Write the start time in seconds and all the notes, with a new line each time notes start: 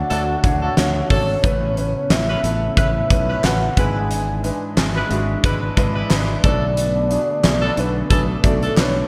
Already playing: D3 A3 D4 F#4 C#5 D5 F#5
0.10 D2 F#3 A3 D4 F#4 A4 C#5, closed hi-hat
0.43 D2 A3 D4 F#4 C#5, kick, closed hi-hat
0.62 F#3 D4 A4
0.77 D2 A3 D4 F#4 C#5, snare, closed hi-hat
1.10 G#1 F#3 A3 D4 F#4 A4 C#5, kick, open hi-hat
1.43 A1 A2 C#3 A3 B3 C#4 E4 B4, kick, closed hi-hat
1.77 A3 C#4 E4 B4, closed hi-hat
2.10 A1 A3 C#4 E4 B4 E5, snare, clap, closed hi-hat
2.29 E3 C#4 B4
2.43 A1 A3 C#4 E4 A4, closed hi-hat
2.77 A1 E3 A3 C#4 E4 B4 E5, kick, closed hi-hat
3.10 B1 A3 C#4 E4 B4, kick, closed hi-hat
3.29 E3 C#4 B4
3.43 A1 A3 C#4 E4 B4 F#5, snare, clap, closed hi-hat
3.77 G#1 G#2 E3 G#3 D4 E4 B4 G#5, kick, closed hi-hat
4.11 closed hi-hat
4.43 G#3 D4 E4 B4, closed hi-hat
4.77 G#1 G#3 D4 E4 G#4, snare, clap, closed hi-hat
4.95 G#3 E4 B4
5.10 G#1 G#3 D4 E4 F#4, closed hi-hat
5.43 G#1 G#3 D4 E4 B4, kick, closed hi-hat
5.77 G#1 G#3 D4 E4 B4, kick, closed hi-hat
5.95 G#3 E4 B4
6.10 G#1 G#3 D4 E4 B4, snare, clap, closed hi-hat
6.44 B1 B2 D3 F#3 A3 B3 D4 F#4 A4 B4 D5, kick, closed hi-hat
6.77 closed hi-hat
7.10 A3 D4 F#4 G#4, closed hi-hat
7.43 B1 A3 D4 F#4 G#4, snare, clap, closed hi-hat
7.62 F#3 D4 A4
7.77 B1 A3 D4 F#4 B4, closed hi-hat
8.10 B1 F#3 A3 D4 F#4 G#4 A4 B4, kick, closed hi-hat
8.43 B1 A3 D4 F#4 A4 D5, kick, closed hi-hat
8.62 F#3 D4 A4, closed hi-hat
8.77 B1 A3 D4 F#4 B4 C#5, snare, clap, closed hi-hat